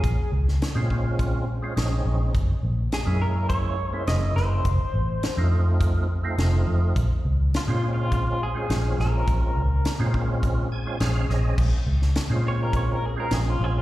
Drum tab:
CC |----------------|----------------|----------------|----------------|
HH |x---x---x---x---|x---x---x---x---|x---x---x---x---|x---x---x---x---|
SD |---oo-------o---|----o-------o-o-|----o-------o---|----o-------o-o-|
BD |o-----o-o-------|o-------o-------|o-------o-------|o-------o-------|

CC |----------------|x---------------|
HH |x---x---x---x---|----x---x---x---|
SD |----o-------o-o-|---oo-------o---|
BD |o-----o-o-------|o-------o-------|